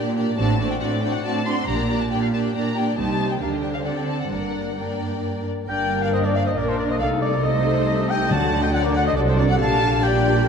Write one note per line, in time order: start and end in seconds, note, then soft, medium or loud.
0.00 0.33 A#2 medium
0.00 0.15 A#3 medium
0.00 0.15 D4 medium
0.00 0.16 G4 medium
0.00 0.16 D5 soft
0.00 0.16 G5 medium
0.16 0.38 A#3 medium
0.16 0.37 D4 soft
0.16 0.38 G4 soft
0.16 0.37 D5 soft
0.37 0.75 A1 medium
0.37 0.76 A2 medium
0.37 0.59 C4 medium
0.37 0.59 D4 medium
0.37 0.58 F#4 medium
0.37 0.58 D5 medium
0.37 0.68 A5 medium
0.60 0.80 C4 soft
0.60 0.80 D4 medium
0.60 0.80 F#4 soft
0.60 0.80 D5 soft
0.71 0.75 G5 medium
0.81 1.20 A2 medium
0.81 1.03 C4 medium
0.81 1.02 D4 medium
0.81 1.01 F#4 medium
0.81 1.02 D5 medium
0.81 0.85 F#5 medium
0.92 1.03 D5 medium
1.02 1.23 C4 soft
1.02 1.24 D4 soft
1.02 1.23 F#4 soft
1.02 1.23 D5 soft
1.02 1.14 G5 medium
1.14 1.25 F#5 medium
1.24 1.63 A2 medium
1.24 1.45 C4 medium
1.24 1.45 D4 medium
1.24 1.45 F#4 medium
1.24 1.44 D5 medium
1.24 1.46 A5 medium
1.45 1.68 C4 medium
1.45 1.67 D4 medium
1.45 1.68 F#4 soft
1.45 1.67 D5 soft
1.45 1.68 C6 medium
1.67 2.04 A#1 medium
1.67 2.06 A#2 medium
1.67 1.88 A#3 medium
1.67 1.88 D4 medium
1.67 1.88 G4 medium
1.67 1.88 D5 medium
1.67 2.00 A#5 medium
1.89 2.10 A#3 medium
1.89 2.11 D4 medium
1.89 2.09 G4 soft
1.89 2.09 D5 soft
2.01 2.12 A5 medium
2.11 2.49 A#2 medium
2.11 2.32 A#3 soft
2.11 2.32 D4 soft
2.11 2.32 G4 soft
2.11 2.32 D5 soft
2.11 2.22 G5 medium
2.23 2.27 F5 medium
2.33 2.54 A#3 soft
2.33 2.54 D4 soft
2.33 2.53 G4 soft
2.33 2.54 D5 soft
2.33 2.38 A5 medium
2.46 2.55 G5 medium
2.54 2.92 A#2 soft
2.54 2.76 A#3 soft
2.54 2.76 D4 medium
2.54 2.75 G4 soft
2.54 2.75 D5 soft
2.54 2.77 A#5 medium
2.76 2.98 A#3 soft
2.76 2.98 D4 soft
2.76 2.97 G4 soft
2.76 2.97 D5 soft
2.76 2.98 G5 medium
2.97 3.38 C2 soft
2.97 3.38 C3 medium
2.97 3.38 G3 medium
2.97 3.38 D#4 medium
2.97 3.38 G4 soft
2.97 3.38 C5 soft
2.97 3.30 A5 medium
3.31 3.42 G5 soft
3.41 3.82 D2 soft
3.41 4.29 D3 soft
3.41 3.85 G3 soft
3.41 3.84 D4 soft
3.41 3.85 G4 soft
3.41 3.49 A#4 soft
3.41 3.52 F5 medium
3.53 3.64 D#5 medium
3.63 3.85 C5 soft
3.63 3.67 G5 medium
3.74 3.79 F5 soft
3.85 4.31 C4 soft
3.85 4.29 D4 soft
3.85 4.31 A4 soft
3.85 4.30 D5 soft
3.85 3.90 F#5 medium
3.97 4.01 G5 soft
4.08 4.19 A5 medium
4.20 4.30 F#5 soft
4.30 4.74 G1 soft
4.30 5.45 G2 soft
4.30 4.76 A#3 soft
4.30 4.76 D4 soft
4.30 4.76 A#4 soft
4.30 4.76 D5 soft
4.30 4.76 F#5 medium
4.77 5.46 A#3 soft
4.77 5.46 D4 soft
4.77 5.46 A#4 soft
4.77 5.46 D5 soft
4.77 5.46 G5 soft
5.67 6.52 G1 medium
5.67 6.52 G2 medium
5.67 6.53 A#3 soft
5.67 6.52 D4 medium
5.67 6.53 D4 medium
5.67 6.09 A#4 medium
5.67 6.52 A#4 medium
5.67 5.99 D5 medium
5.67 5.99 G5 medium
5.67 6.04 G5 medium
6.02 6.12 D5 soft
6.02 6.06 F5 medium
6.02 6.13 F5 soft
6.02 6.15 F5 medium
6.12 6.55 C5 soft
6.12 6.18 C5 medium
6.12 6.23 D#5 medium
6.12 6.26 D#5 medium
6.12 6.24 D#5 medium
6.23 6.28 A#4 soft
6.23 6.34 D5 medium
6.23 6.35 D5 medium
6.23 6.37 D5 medium
6.34 6.45 D5 medium
6.34 6.39 F5 medium
6.34 6.49 F5 medium
6.34 6.46 F5 medium
6.46 6.50 C5 soft
6.46 6.56 D#5 soft
6.46 6.59 D#5 medium
6.56 6.99 A#1 soft
6.56 6.98 A#2 soft
6.56 6.99 A#3 soft
6.56 6.99 D4 medium
6.56 6.99 D4 soft
6.56 6.98 A#4 medium
6.56 6.99 A#4 soft
6.56 6.68 A#4 medium
6.56 6.67 D5 medium
6.56 6.70 D5 medium
6.56 6.62 D5 medium
6.67 6.78 A4 soft
6.67 6.78 C5 medium
6.67 6.79 C5 medium
6.78 6.89 A#4 medium
6.78 6.89 D5 medium
6.78 6.84 D5 medium
6.89 7.00 C5 medium
6.89 7.00 D#5 soft
6.89 6.94 D#5 medium
6.89 6.95 D#5 medium
6.99 8.31 C2 medium
6.99 8.30 C3 medium
6.99 7.43 A3 medium
6.99 7.42 D#4 medium
6.99 7.42 D#4 soft
6.99 7.42 A4 medium
6.99 7.86 A4 medium
6.99 7.08 D5 medium
6.99 7.07 F5 medium
6.99 7.21 F5 medium
6.99 7.07 F5 medium
7.22 7.43 A#4 medium
7.22 7.46 D5 medium
7.22 7.43 D5 medium
7.22 7.44 D5 medium
7.43 8.29 A3 medium
7.43 8.29 D#4 medium
7.43 8.29 D#4 soft
7.43 8.29 A4 medium
7.43 8.10 C5 medium
7.43 8.08 D#5 medium
7.43 8.11 D#5 medium
7.43 8.08 D#5 medium
7.87 8.30 G4 medium
8.09 8.30 D#5 medium
8.09 8.30 G5 medium
8.09 8.31 G5 medium
8.30 9.16 D2 medium
8.30 9.16 D3 medium
8.30 8.91 D3 medium
8.30 8.73 F#3 medium
8.30 8.72 D4 medium
8.30 8.71 D4 medium
8.30 8.72 F#4 medium
8.30 8.73 F#4 medium
8.30 8.63 F#5 medium
8.30 8.62 A5 medium
8.62 8.74 D#5 medium
8.62 8.73 G5 medium
8.62 8.68 G5 medium
8.62 8.73 G5 medium
8.73 9.15 F#3 medium
8.73 9.15 D4 medium
8.73 9.16 D4 medium
8.73 9.15 F#4 medium
8.73 10.00 A4 medium
8.73 8.84 D5 medium
8.73 8.79 F#5 medium
8.73 8.85 F#5 medium
8.84 8.94 A#4 medium
8.84 8.89 D5 medium
8.84 8.95 D5 medium
8.84 8.90 D5 medium
8.95 9.05 D5 medium
8.95 9.05 F#5 medium
8.95 9.06 F#5 medium
8.95 9.01 F#5 medium
9.06 9.16 C5 medium
9.06 9.17 D#5 medium
9.06 9.12 D#5 medium
9.06 9.17 D#5 medium
9.16 9.59 C2 medium
9.16 9.58 C3 medium
9.16 9.59 F#3 medium
9.16 9.58 D4 medium
9.16 9.59 D4 medium
9.16 9.58 F#4 medium
9.16 9.21 A4 medium
9.16 9.21 D5 medium
9.16 9.27 D5 medium
9.26 9.37 A4 medium
9.26 9.39 C5 medium
9.26 9.38 C5 medium
9.38 9.48 A#4 medium
9.38 9.49 D5 medium
9.38 9.44 D5 medium
9.49 9.59 D5 medium
9.49 9.54 F#5 medium
9.49 9.60 F#5 medium
9.49 9.56 F#5 medium
9.59 10.48 A#1 medium
9.59 10.48 A#2 medium
9.59 10.03 G3 medium
9.59 10.02 D4 medium
9.59 10.02 G4 medium
9.59 10.01 F5 medium
9.59 10.02 A5 medium
9.59 10.05 A5 loud
10.02 10.48 G3 medium
10.02 10.48 D4 medium
10.02 10.47 G4 medium
10.02 10.48 G4 medium
10.02 10.48 D5 medium
10.02 10.48 G5 medium
10.45 10.48 A#4 medium